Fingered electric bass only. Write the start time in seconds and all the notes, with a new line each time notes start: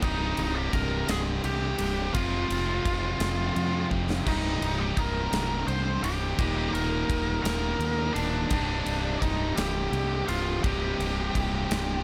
0.03 C1
0.38 C1
0.73 C1
1.09 C1
1.44 C2
1.80 C1
2.15 F1
2.50 F1
2.85 F1
3.20 F1
3.56 F2
3.92 F1
4.27 C1
4.61 C1
4.97 C1
5.33 C1
5.67 C2
6.03 C1
6.39 D#1
6.73 D#1
7.09 D#1
7.44 D#1
7.79 D#2
8.15 D1
8.51 C1
8.86 C1
9.22 C1
9.57 C1
9.92 C2
10.29 C1
10.64 C1
10.99 C1
11.35 C1
11.71 C1